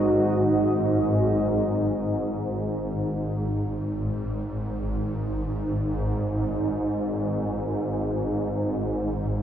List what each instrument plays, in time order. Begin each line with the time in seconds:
Already playing: synth drone G#1 G#2, analog synth pad G#3 D#4 F#4 D#5
1.94 synth drone G#1 G#2